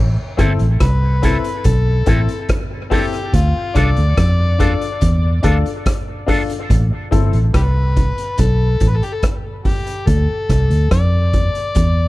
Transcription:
Already playing: fingered electric bass A1
0.37 fingered electric bass G1, grand piano C4 E4 A4, clean electric guitar C4 E4 A4, kick, cross-stick, closed hi-hat
0.59 fingered electric bass A1, closed hi-hat
0.80 fingered electric bass C2, harmonica B4, kick, cross-stick, closed hi-hat
1.22 grand piano C4 E4 A4, clean electric guitar C4 E4 A4, kick, closed hi-hat
1.44 closed hi-hat
1.64 fingered electric bass B1, harmonica A4, kick, closed hi-hat
2.06 fingered electric bass A1, grand piano C4 E4 A4, clean electric guitar C4 E4 A4, kick, closed hi-hat
2.29 closed hi-hat
2.49 kick, cross-stick, closed hi-hat
2.90 grand piano C4 E4 A4, clean electric guitar C4 E4 A4, harmonica D4 G4, kick, open hi-hat
3.13 closed hi-hat
3.33 fingered electric bass D2, harmonica F4, kick, closed hi-hat
3.74 fingered electric bass C2, grand piano D4 F4 A4, clean electric guitar D4 F4 A4, harmonica D5, kick, cross-stick, closed hi-hat
3.97 fingered electric bass D2, closed hi-hat
4.17 fingered electric bass F2, kick, cross-stick, closed hi-hat
4.58 clean electric guitar D4 F4 A4, grand piano D4 F4 A4, kick, closed hi-hat
4.81 closed hi-hat
5.01 fingered electric bass E2, kick, closed hi-hat
5.43 fingered electric bass D2, clean electric guitar D4 F4 A4, grand piano D4 F4 A4, kick, closed hi-hat
5.66 closed hi-hat
5.86 kick, cross-stick, closed hi-hat
6.26 grand piano D4 F4 A4, clean electric guitar D4 F4 A4, kick, open hi-hat
6.50 closed hi-hat
6.70 fingered electric bass A1, kick, closed hi-hat
7.11 fingered electric bass G1, grand piano C4 E4 A4, kick, closed hi-hat
7.33 fingered electric bass A1, closed hi-hat
7.54 fingered electric bass C2, harmonica G4 B4, kick, cross-stick, closed hi-hat
7.96 kick, closed hi-hat
8.18 closed hi-hat
8.38 fingered electric bass B1, harmonica A4, kick, closed hi-hat
8.80 fingered electric bass A1, kick, closed hi-hat
8.88 harmonica B4
8.97 harmonica A4
9.03 harmonica G4, closed hi-hat
9.13 harmonica A4
9.23 kick, cross-stick, closed hi-hat
9.65 harmonica G4, kick, open hi-hat
9.87 closed hi-hat
10.07 fingered electric bass D2, harmonica A4, kick, closed hi-hat
10.49 fingered electric bass C2, kick, cross-stick, closed hi-hat
10.70 fingered electric bass D2, closed hi-hat
10.91 fingered electric bass F2, harmonica D5, kick, cross-stick, closed hi-hat
11.33 kick, closed hi-hat
11.55 closed hi-hat
11.75 fingered electric bass E2, kick, closed hi-hat

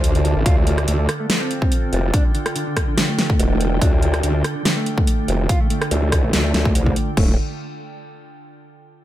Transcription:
Already playing: wobble bass D2, ambient pad D3 D4 F4 A4 A5, clean electric guitar C5
0.04 closed hi-hat
0.15 wobble bass D2, closed hi-hat
0.25 closed hi-hat
0.36 wobble bass A1
0.46 wobble bass D2, clean electric guitar F4, ambient pad G5, kick, closed hi-hat
0.57 clean electric guitar A3
0.67 clean electric guitar A3, closed hi-hat
0.78 cross-stick, closed hi-hat
0.88 wobble bass D2, clean electric guitar A3, closed hi-hat
0.99 clean electric guitar A3
1.09 cross-stick, closed hi-hat
1.20 clean electric guitar A3
1.30 clean electric guitar A3, snare, closed hi-hat
1.41 clean electric guitar C4
1.51 closed hi-hat
1.62 kick
1.72 closed hi-hat
1.93 wobble bass F1, closed hi-hat
2.14 clean electric guitar D4, kick, closed hi-hat
2.25 clean electric guitar D3
2.35 clean electric guitar D3, closed hi-hat
2.46 cross-stick, closed hi-hat
2.56 clean electric guitar D3, closed hi-hat
2.67 clean electric guitar D3
2.77 kick, cross-stick, closed hi-hat
2.88 clean electric guitar D3
2.98 clean electric guitar D3, snare, closed hi-hat
3.09 clean electric guitar A3
3.19 snare, closed hi-hat
3.30 kick
3.40 wobble bass E1, closed hi-hat
3.61 closed hi-hat
3.81 wobble bass D2, clean electric guitar D4, kick, closed hi-hat
3.93 clean electric guitar D3
4.03 clean electric guitar D3, closed hi-hat
4.14 cross-stick, closed hi-hat
4.23 wobble bass D2, clean electric guitar D3, closed hi-hat
4.35 clean electric guitar D3
4.44 cross-stick, closed hi-hat
4.56 clean electric guitar D3
4.65 clean electric guitar D3, snare, closed hi-hat
4.77 clean electric guitar A3
4.86 closed hi-hat
4.98 kick
5.07 closed hi-hat
5.28 wobble bass F1, closed hi-hat
5.49 clean electric guitar F4, kick, closed hi-hat
5.61 clean electric guitar A3
5.70 clean electric guitar A3, closed hi-hat
5.82 cross-stick, closed hi-hat
5.91 wobble bass D2, clean electric guitar A3, closed hi-hat
6.02 clean electric guitar A3
6.12 kick, cross-stick, closed hi-hat
6.23 clean electric guitar A3
6.33 wobble bass D2, clean electric guitar A3, snare, closed hi-hat
6.44 clean electric guitar A3
6.54 wobble bass D2, snare, closed hi-hat
6.65 kick
6.75 wobble bass C2, closed hi-hat
6.86 kick
6.96 closed hi-hat
7.17 wobble bass D1, clean electric guitar A3, kick, crash

